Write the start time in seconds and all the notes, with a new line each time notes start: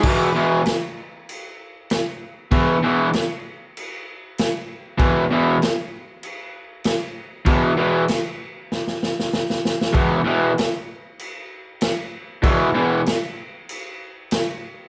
0.03 E2 B2 E3, kick, crash
0.36 E2 B2 E3
0.66 snare, crash
1.29 crash
1.90 snare, crash
2.51 E2 B2 E3, kick, crash
2.83 E2 B2 E3
3.13 snare, crash
3.77 crash
4.38 snare, crash
4.98 E2 B2 E3, kick, crash
5.31 E2 B2 E3
5.62 snare, crash
6.23 crash
6.84 snare, crash
7.45 E2 B2 E3, kick, crash
7.77 E2 B2 E3
8.08 snare, crash
8.72 snare
8.88 snare
9.03 snare
9.20 snare
9.33 snare
9.50 snare
9.65 snare
9.81 snare
9.93 E2 B2 E3, kick, crash
10.25 E2 B2 E3
10.58 snare, crash
11.19 crash
11.81 snare, crash
12.42 E2 B2 E3, kick, crash
12.74 E2 B2 E3
13.06 snare, crash
13.69 crash
14.31 snare, crash